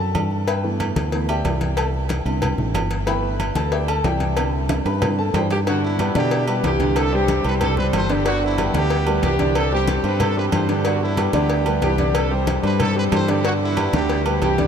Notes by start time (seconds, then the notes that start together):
0.00 F#2 A4 A5
0.15 G2, high conga, low timbale, low agogo
0.31 high conga
0.47 B4 E5 G5 B5, cowbell, high conga, low agogo
0.63 E3 A3 B3, high conga
0.80 cowbell, high conga, low timbale, low agogo
0.96 D2, cowbell, high conga, low agogo
1.12 E3 A3 B3, cowbell, high conga
1.29 G4 D5 E5 G5, high conga, low agogo
1.44 C2, cowbell, high conga, low timbale, low agogo
1.61 cowbell, high conga
1.77 A4 A5, cowbell, high conga, low agogo
1.94 high conga
2.09 cowbell, high conga, low timbale, low agogo
2.25 C2 D3 G3 C4, high conga, low agogo
2.42 cowbell, high conga, low conga, low agogo
2.58 A1, high conga, low conga
2.74 G1, cowbell, high conga, low timbale, low agogo
2.91 cowbell, high conga
3.06 E3 A3 B3 B4 E5 G5 B5, cowbell, high conga, low agogo
3.23 high conga
3.40 cowbell, high conga, low timbale, low agogo
3.55 D2 A4 A5, cowbell, high conga, low agogo
3.72 G4 D5 E5 G5, cowbell, high conga
3.88 A4 A5, high conga, low agogo
4.04 C2 G4 D5 E5 G5, cowbell, high conga, low timbale, low agogo
4.20 cowbell, high conga
4.37 D3 G3 C4, cowbell, high conga, low agogo
4.53 high conga
4.69 cowbell, high conga, high timbale, low agogo
4.85 G2 B4 B5, high conga, high timbale, low agogo
5.02 D3 G3 C4, cowbell, high conga, low conga, low timbale, low agogo
5.18 A4 A5, high conga
5.34 G2 G4 C5 D5 G5, cowbell, high conga, low timbale, low agogo
5.50 G4, cowbell, high conga, low timbale
5.66 D3 B3 D4 F#4 D5, cowbell, high conga, low agogo
5.83 B3 E4, high conga
5.99 G3 G4 B4, cowbell, high conga, low timbale, low agogo
6.15 B2 D3 B3 D4 E4 G4 D5, cowbell, high conga, low agogo
6.31 cowbell, high conga
6.47 G3 G4 B4, high conga, low agogo
6.64 C2 B3 E4 G4, cowbell, high conga, low timbale, low agogo
6.80 D3 D4 D5, cowbell, high conga
6.96 C4 D4 A4, cowbell, high conga, low agogo
7.12 G3 C4 D4 G4 C5, high conga
7.28 cowbell, high conga, low timbale, low agogo
7.44 C2 G3 G4 B4 C5, high conga, low agogo
7.61 C4 D4 A4, cowbell, high conga, low conga, low agogo
7.77 G3 G4 B4 C5, high conga, low conga
7.93 G1 C5, cowbell, high conga, low timbale, low agogo
8.09 D3 D4 G4 D5, cowbell, high conga
8.25 D3 B3 D4 F#4 D5, cowbell, low agogo
8.42 B3 E4, high conga
8.58 G3 G4 B4, cowbell, high conga, low timbale, low agogo
8.74 D2 D3 B3 D4 E4 G4 D5, cowbell, high conga, low agogo
8.90 cowbell, high conga
9.07 G3 G4 B4, high conga, low agogo
9.22 C2 B3 E4 G4, cowbell, high conga, low timbale, low agogo
9.39 D3 D4 D5, cowbell, high conga
9.55 C4 D4 A4, cowbell, high conga, low agogo
9.71 G3 C4 D4 G4 C5, high conga
9.87 cowbell, high conga, low timbale, low agogo
10.03 G2 G3 G4 B4 C5, high conga, low agogo
10.20 C4 D4 A4, cowbell, high conga, low conga, low agogo
10.36 G3 G4 B4 C5, high conga
10.52 G2 C5, cowbell, high conga, low timbale, low agogo
10.69 D3 D4 G4 D5, cowbell, high conga
10.85 D3 B3 D4 F#4 D5, cowbell, high conga, low agogo
11.01 B3 E4, high conga
11.17 G3 G4 B4, cowbell, high conga, low timbale, low agogo
11.33 D2 D3 B3 D4 E4 G4 D5, cowbell, high conga, low agogo
11.49 cowbell, high conga
11.66 G3 G4 B4, high conga, low agogo
11.82 C2 B3 E4 G4, cowbell, high conga, low timbale, low agogo
11.98 D3 D4 D5, cowbell, high conga
12.15 C4 D4 A4, cowbell, high conga, low agogo
12.31 G3 G4 C5, high conga
12.47 cowbell, high conga, low timbale, low agogo
12.63 G2 G3 G4 B4 C5, high conga, low agogo
12.80 C4 D4 A4, cowbell, high conga, low conga, low agogo
12.96 G3 G4 B4 C5, high conga
13.12 G2 C5, cowbell, high conga, low timbale, low agogo
13.28 D3 D4 G4 D5, cowbell, high conga
13.44 D3 B3 D4 F#4 D5, cowbell, high conga, low agogo
13.61 B3 E4, high conga
13.77 G3 G4 B4, cowbell, high conga, low timbale, low agogo
13.93 D2 D3 B3 D4 E4 G4 D5, cowbell, high conga, low agogo
14.09 cowbell, high conga
14.26 G3 G4 B4, high conga, low agogo
14.42 C2 B3 E4 G4, cowbell, high conga, low timbale, low agogo
14.58 D3 D4 D5, cowbell, high conga